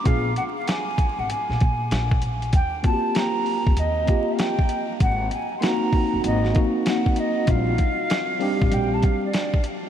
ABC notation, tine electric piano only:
X:1
M:4/4
L:1/8
Q:"Swing 16ths" 1/4=97
K:Bblyd
V:1 name="Tine electric piano"
[_CDF_A] z6 z | z [B,CF^FG]3 z [B,C=FG] z2 | z2 [^A,^B,^D^F]3 [A,B,DF]3 | [G,CDF] z2 [G,CDG]3 z2 |]